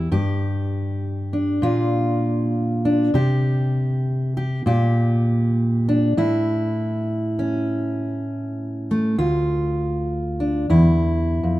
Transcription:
0.00 3.14 G3 medium
0.12 1.59 G2 medium
0.12 1.59 G4 medium
1.33 2.85 D4 soft
1.62 3.09 A#2 medium
1.62 3.10 F4 medium
2.85 3.10 D4 medium
3.14 4.61 C3 medium
3.14 4.35 G4 medium
4.37 4.62 G4 medium
4.66 6.12 A#2 medium
4.66 6.13 G4 medium
5.89 6.13 D4 medium
6.17 9.18 A2 medium
6.17 9.18 E4 medium
7.39 9.15 C#4 soft
8.91 9.15 A3 medium
9.18 10.69 D2 medium
9.18 10.65 F4 medium
10.40 10.65 D4 soft
10.70 11.43 E2 medium
10.70 11.60 E4 medium
11.43 11.60 F2 medium

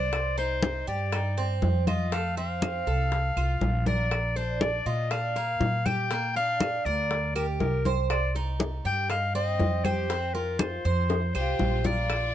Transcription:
0.00 0.81 C2 medium
0.00 0.36 C5 medium
0.00 0.34 D5 medium
0.13 high bongo medium
0.13 high conga soft
0.13 claves medium
0.38 0.86 D#4 medium
0.38 0.84 C5 loud
0.38 high bongo soft
0.38 high conga soft
0.63 high bongo medium
0.63 high conga medium
0.87 1.58 G2 medium
0.87 1.12 G4 medium
0.87 1.57 D5 medium
1.12 1.37 D#4 medium
1.12 high bongo medium
1.12 high conga soft
1.12 claves medium
1.37 1.86 C4 medium
1.37 high bongo soft
1.37 high conga soft
1.62 2.80 F2 medium
1.62 high bongo soft
1.62 low bongo medium
1.62 high conga medium
1.87 2.11 F4 medium
1.87 2.14 D#5 medium
1.87 high bongo soft
1.87 high conga medium
1.87 claves medium
2.12 2.36 A3 medium
2.12 2.37 F5 medium
2.12 high bongo medium
2.12 high conga soft
2.37 2.85 C4 medium
2.37 3.83 F5 loud
2.37 high bongo soft
2.37 high conga soft
2.62 high bongo medium
2.62 high conga medium
2.62 claves medium
2.87 3.33 C2 medium
2.87 3.35 A4 medium
2.87 high conga soft
3.12 high bongo medium
3.12 high conga soft
3.36 3.60 C2 medium
3.36 3.85 F4 medium
3.36 high bongo soft
3.36 high conga soft
3.36 claves medium
3.61 4.79 A#1 medium
3.61 high bongo soft
3.61 low bongo medium
3.61 high conga medium
3.86 4.35 A#4 medium
3.86 4.38 D5 medium
3.86 high bongo soft
3.86 high conga medium
4.11 high bongo medium
4.11 high conga soft
4.11 claves medium
4.36 4.85 D4 medium
4.36 4.63 C5 medium
4.36 high bongo soft
4.36 high conga soft
4.61 4.88 D5 medium
4.61 high bongo medium
4.61 high conga medium
4.86 5.57 A#2 medium
4.86 5.10 F4 medium
4.86 5.13 D#5 medium
5.11 5.35 D4 medium
5.11 5.87 F5 loud
5.11 high bongo medium
5.11 high conga soft
5.11 claves medium
5.36 5.84 A#3 medium
5.36 high bongo soft
5.36 high conga soft
5.60 6.79 A#2 medium
5.60 high bongo soft
5.60 low bongo medium
5.60 high conga medium
5.86 6.10 G4 medium
5.86 6.36 G5 loud
5.86 high bongo soft
5.86 high conga medium
5.86 claves medium
6.11 6.35 A#3 medium
6.11 high bongo medium
6.11 high conga soft
6.35 6.84 D4 medium
6.35 6.87 F5 loud
6.35 high bongo soft
6.35 high conga soft
6.60 high bongo medium
6.60 high conga medium
6.60 claves medium
6.85 7.56 D2 loud
6.85 7.34 A#4 medium
6.85 7.35 D5 loud
6.85 high conga soft
7.11 high bongo medium
7.11 high conga soft
7.35 7.84 G4 medium
7.35 7.46 A#4 medium
7.35 high bongo soft
7.35 high conga soft
7.35 claves medium
7.60 8.78 C2 medium
7.60 7.95 A#4 medium
7.60 high bongo soft
7.60 low bongo medium
7.60 high conga medium
7.85 8.34 C5 medium
7.85 high bongo soft
7.85 high conga medium
8.10 8.33 D5 medium
8.10 high bongo medium
8.10 high conga soft
8.10 claves medium
8.35 8.84 D#4 medium
8.35 high bongo soft
8.35 high conga soft
8.60 high bongo medium
8.60 high conga medium
8.85 9.56 G2 medium
8.85 9.09 G4 medium
8.85 9.09 G5 loud
9.10 9.34 D#4 medium
9.10 9.33 F5 medium
9.10 high bongo medium
9.10 high conga soft
9.10 claves medium
9.35 9.83 C4 medium
9.35 9.86 D#5 loud
9.35 high bongo soft
9.35 high conga soft
9.59 10.78 F2 medium
9.59 high bongo soft
9.59 low bongo medium
9.59 high conga medium
9.85 10.09 G4 medium
9.85 10.36 C5 medium
9.85 high bongo soft
9.85 high conga medium
9.85 claves medium
10.10 10.34 C4 medium
10.10 high bongo medium
10.10 high conga soft
10.34 10.83 F4 medium
10.34 10.61 A#4 medium
10.34 high bongo soft
10.34 high conga soft
10.59 11.34 C5 medium
10.59 high bongo medium
10.59 high conga medium
10.59 claves medium
10.85 11.31 F2 medium
10.85 11.33 C5 medium
10.85 high conga soft
11.09 high bongo medium
11.09 high conga soft
11.34 11.58 C2 medium
11.34 11.82 F4 medium
11.34 11.83 G4 medium
11.34 11.87 C5 medium
11.34 high conga soft
11.34 claves medium
11.59 12.35 A#1 medium
11.59 low bongo medium
11.59 high conga medium
11.85 12.35 F4 medium
11.85 12.09 A#4 medium
11.85 12.35 D5 medium
11.85 low bongo medium
11.85 high conga medium
12.09 high bongo medium
12.09 high conga soft
12.09 claves medium

